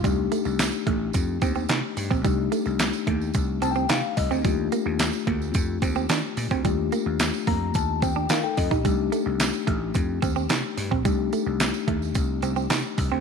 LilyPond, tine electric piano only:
\new Staff \with { instrumentName = "Tine electric piano" } { \time 4/4 \key c \dorian \tempo 4 = 109 << { r1 | r2 \tuplet 3/2 { r8. a''16 g''8 } f''8 ees''8 | r1 | r4. bes''8 a''8 g''8 <f' bes' f''>16 <ees' a' g''>16 ees''16 <d' g'>16~ |
<d' g'>16 r2. r8. | r1 | } \\ { <a d' ees' g'>1 | <a d' ees' g'>1 | <a d' f' g'>1 | <a d' f' g'>1 |
<a d' ees' g'>1 | <a d' ees' g'>1 | } >> }